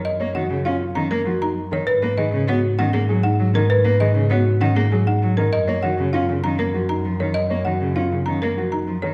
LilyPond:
<<
  \new Staff \with { instrumentName = "Marimba" } { \time 6/4 \key fis \major \tempo 4 = 197 dis''8 r8 fis''8 r8 eis''8 r8 ais''8 ais'8 r8 ais''8 r8 cis''8 | b'8 r8 dis''8 r8 cis''8 r8 fis''8 gis'8 r8 fis''8 r8 ais'8 | b'8 r8 dis''8 r8 cis''8 r8 fis''8 gis'8 r8 fis''8 r8 ais'8 | dis''8 r8 fis''8 r8 eis''8 r8 ais''8 ais'8 r8 ais''8 r8 cis''8 |
dis''8 r8 fis''8 r8 eis''8 r8 ais''8 ais'8 r8 ais''8 r8 cis''8 | }
  \new Staff \with { instrumentName = "Grand piano" } { \time 6/4 \key fis \major r8 cis''8 fis'8 r8 eis'8 r8 cis'8 r8 fis'8 dis'8 r8 ais'8 | r8 b'8 gis'8 r8 fis'8 r8 cis'8 r8 gis'8 dis'8 r8 ais'8 | r8 b'8 gis'8 r8 fis'8 r8 cis'8 r8 gis'8 dis'8 r8 ais'8 | r8 cis''8 fis'8 r8 eis'8 r8 cis'8 r8 fis'8 dis'8 r8 ais'8 |
r8 cis''8 fis'8 r8 eis'8 r8 cis'8 r8 fis'8 dis'8 r8 ais'8 | }
  \new Staff \with { instrumentName = "Cello" } { \clef bass \time 6/4 \key fis \major r8 ais8 dis8 cis8 cis'8 r8 dis8 ais8 eis8 r4 dis8 | r8 ais8 dis8 cis8 b8 r8 dis8 ais8 fis8 r8 fis8 dis8 | r8 ais8 dis8 cis8 b8 r8 dis8 ais8 fis8 r8 fis8 dis8 | r8 ais8 dis8 cis8 cis'8 cis8 dis8 ais8 eis8 r8 eis8 dis8 |
r8 ais8 dis8 cis8 cis'8 cis8 dis8 ais8 eis8 r8 eis8 dis8 | }
  \new Staff \with { instrumentName = "Double bass" } { \clef bass \time 6/4 \key fis \major fis,1. | gis,1.~ | gis,1. | fis,1.~ |
fis,1. | }
>>